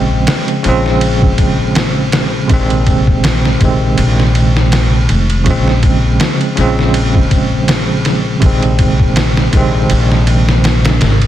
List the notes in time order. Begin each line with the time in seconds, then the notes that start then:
Already playing: A#1 C#3 F3 G#3 C4
0.27 snare, ride
0.48 ride
0.63 A#1 C#3 F3 G#3, ride
0.69 C4
0.86 snare
1.01 ride
1.22 kick
1.38 kick, ride
1.75 snare, ride
2.12 snare, ride
2.48 A#1 C3 D#3 G#3, kick, ride
2.54 C4
2.70 ride
2.87 kick, ride
3.07 kick
3.24 snare, ride
3.45 snare
3.59 A#1 C3 D#3 G#3, kick, ride
3.65 C4
3.98 A#1, ride
4.20 snare
4.35 ride
4.57 snare
4.72 snare, ride
5.09 F1, ride
5.30 ride
5.44 A#1 C#3 F3, kick, ride
5.48 G#3 C4
5.68 snare
5.83 kick, ride
6.20 snare, ride
6.41 ride
6.55 A#1 C#3 F3 G#3, ride
6.61 C4
6.79 snare
6.94 ride
7.15 kick
7.31 kick, ride
7.68 snare, ride
8.05 snare, ride
8.40 A#1 C3 D#3 G#3, kick, ride
8.46 C4
8.62 ride
8.79 kick, ride
9.00 kick
9.16 snare, ride
9.37 snare
9.51 A#1 C3 D#3 G#3, kick, ride
9.57 C4
9.90 A#1, ride
10.12 snare
10.27 ride
10.49 snare
10.64 snare, ride
10.85 snare, ride
11.01 G#1, snare, ride
11.22 ride